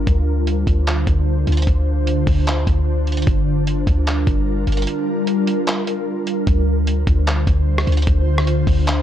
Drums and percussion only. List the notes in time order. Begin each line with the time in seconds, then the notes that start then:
0.07 kick, closed hi-hat
0.47 closed hi-hat
0.67 kick, closed hi-hat
0.87 clap, closed hi-hat
1.07 kick, closed hi-hat
1.47 closed hi-hat
1.52 closed hi-hat
1.57 closed hi-hat
1.62 closed hi-hat
1.67 kick, closed hi-hat
2.07 closed hi-hat
2.27 kick, open hi-hat
2.47 clap, closed hi-hat
2.67 kick, closed hi-hat
3.07 closed hi-hat
3.12 closed hi-hat
3.17 closed hi-hat
3.22 closed hi-hat
3.27 kick, closed hi-hat
3.67 closed hi-hat
3.87 kick, closed hi-hat
4.07 clap, closed hi-hat
4.27 kick, closed hi-hat
4.67 closed hi-hat
4.72 closed hi-hat
4.77 closed hi-hat
4.82 closed hi-hat
4.87 closed hi-hat
5.27 closed hi-hat
5.47 closed hi-hat
5.67 clap, closed hi-hat
5.87 closed hi-hat
6.27 closed hi-hat
6.47 kick, closed hi-hat
6.87 closed hi-hat
7.07 kick, closed hi-hat
7.27 clap, closed hi-hat
7.47 kick, closed hi-hat
7.78 cross-stick
7.87 closed hi-hat
7.92 closed hi-hat
7.97 closed hi-hat
8.02 closed hi-hat
8.07 kick, closed hi-hat
8.38 cross-stick
8.47 closed hi-hat
8.67 kick, open hi-hat
8.87 clap, closed hi-hat